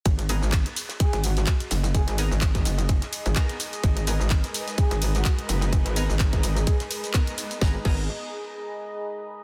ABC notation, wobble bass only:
X:1
M:4/4
L:1/16
Q:"Swing 16ths" 1/4=127
K:G#m
V:1 name="Wobble bass" clef=bass
G,,,3 G,,,2 z4 G,,,3 z2 F,,,2- | F,,, G,,,2 G,,,3 F,,,3 z2 G,,, z4 | G,,,3 G,,,2 z4 G,,,3 z2 F,,,2- | F,,, G,,,2 G,,,3 G,,,2 z8 |
G,,, z G,,,2 z12 |]